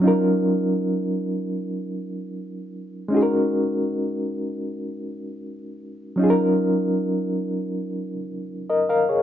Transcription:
0.00 F#3 C#4 D#4
0.05 F4 A#4
3.08 G#3 C#4 D#4
3.14 F#4 G#4
3.23 A#4
6.16 F#3 C#4 D#4
6.21 F4 G#4
6.30 A#4
8.70 A#4 D#5
8.89 A#4 F5
9.09 G#4 C#5

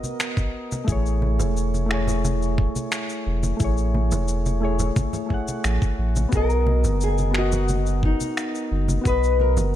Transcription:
Already playing: B3 F#4 A#4 D#5
0.04 high conga, shaker
0.20 finger snap, shaker
0.37 kick, shaker
0.72 high conga, shaker
0.84 A1 A3 E4, kick
0.88 G#4 C#5, shaker
1.06 shaker
1.22 high conga
1.39 E1, low conga, shaker
1.57 shaker
1.74 high conga, shaker
1.86 A3 E4
1.91 G#4 C#5, finger snap
2.07 low conga, shaker
2.25 high conga, shaker
2.42 shaker
2.58 kick
2.76 high conga, shaker
2.92 finger snap, shaker
3.09 shaker
3.27 E1
3.43 high conga, shaker
3.57 A1 A3 E4, kick, shaker
3.62 G#4 C#5
3.77 shaker
3.94 high conga
4.11 E1, low conga, shaker
4.28 shaker
4.46 high conga, shaker
4.60 A3 E4 G#4
4.65 C#5
4.79 low conga, shaker
4.96 kick, high conga, shaker
5.13 low conga, shaker
5.26 A3 E4
5.30 G#4 F#5, kick
5.48 high conga, shaker
5.64 A1, finger snap, shaker
5.82 kick, shaker
5.99 A1
6.16 high conga, shaker
6.29 B1 B3 F#4, kick, shaker
6.34 A#4 D#5
6.50 shaker
6.67 high conga
6.84 F#1, low conga, shaker
7.01 G#4, shaker
7.18 high conga, shaker
7.31 B3 F#4, finger snap
7.36 F#4 A#4 D#5
7.52 low conga, shaker
7.69 high conga, shaker
7.86 shaker
8.03 D#4, kick
8.20 high conga, shaker
8.37 finger snap, shaker
8.55 shaker
8.72 F#1
8.88 high conga, shaker
9.01 B3 F#4, kick
9.06 B1 B4 D#5, shaker
9.24 shaker
9.40 A#4, high conga
9.57 F#1, low conga, shaker

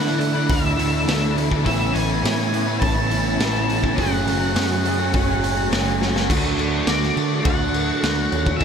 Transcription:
Already playing: D3 E3 A3 D4 E4 E5 F#5 D6
0.04 A3 D4 E4, snare
0.18 D3 A3 D4 E4, muted overdriven electric guitar stroke, open hi-hat
0.33 A3 D4 E4
0.47 D2 D4 E5, kick, open hi-hat
0.61 A3 D4 E4
0.76 D3 E3 A3 D4 E4, open hi-hat
0.92 A3 D4 E4
1.06 D2 D3 A3 D4 E4, snare, open hi-hat
1.21 A3 D4 E4
1.35 D3 E3 A3 D4 E4, open hi-hat
1.50 A3 D4 E4, kick
1.64 A1 A2 E3 A3 B3 C#4 E4 C#5 E5 B5, kick, open hi-hat
1.93 A1 E3 A3 B3 C#4 E4 G#5, open hi-hat
2.08 B3 C#4 E4
2.22 A2 E3 A3 B3 C#4 E4, snare, open hi-hat
2.38 A3 B3 C#4 E4
2.52 A2 E3 A3 B3 C#4 E4, muted overdriven electric guitar stroke, open hi-hat
2.65 A3 C#4 E4
2.70 B3
2.80 A1 C#4 A5, kick, open hi-hat
2.95 B3 C#4 E4
3.09 E3 A3 B3 C#4 E4, open hi-hat
3.24 A3 C#4 E4
3.38 A1 A2 E3 A3 B3 C#4 E4, snare, open hi-hat
3.53 A3 C#4 E4
3.68 E3 A3 B3 C#4 E4, open hi-hat
3.83 A3 B3 C#4 E4, kick
3.97 F#1 F#2 C#3 F#3 A3 C#4 F#4 G#4 F#5 G#5, kick, open hi-hat
4.27 F#1 F#3 A3 C#4 F#4 G#4, open hi-hat
4.41 F#3 A3 C#4 G#4
4.55 F#2 C#3 F#3 A3 C#4 F#4 G#4, snare, open hi-hat
4.69 F#3 A3 C#4 F#4 G#4
4.84 F#3 A3 C#4 F#4 G#4, muted overdriven electric guitar stroke, open hi-hat
4.98 F#3 A3 C#4 F#4 G#4
5.13 F#1 C#4, kick, open hi-hat
5.29 F#3 A3 C#4 G#4
5.43 F#3 A3 C#4 F#4 G#4, open hi-hat
5.56 F#3 A3 C#4 F#4
5.70 F#1 F#2 C#3 F#3 A3 C#4 F#4, snare, open hi-hat
5.74 G#4
5.86 F#3 A3 C#4 F#4
6.00 F#3 A3 C#4 F#4 G#4, snare
6.14 F#3 A3 C#4 F#4 G#4, snare
6.29 D2 D3 F#3 A3 D4 F#4 D5 C#6, kick, crash
6.58 D2 A3 D4 F#4, crash
6.87 D2 D3 F#3 A3 D4 F#4 D5, snare, crash
7.03 snare
7.16 D3 A3 D4 F#4, crash
7.45 D2 D3 A3 D4 F#4 A4 F#5, kick, crash
7.74 A3 D4 F#4, crash
8.02 D2 D3 A3 D4 F#4, snare, crash
8.31 D#2 A3 C#4 D4 F#4, crash
8.47 kick
8.57 E2 B2 E5, crash
8.61 E1 E3 G#3 E5 B5, kick

